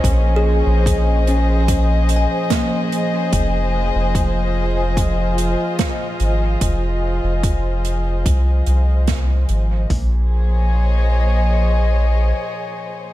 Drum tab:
HH |x-xxxxxx|x-x-xxxx|x-xxxxxx|o-------|
SD |------o-|------o-|------o-|--------|
FT |--------|--------|--------|o-------|
BD |o-o-o-o-|o-o-o-o-|o-o-o-o-|o-------|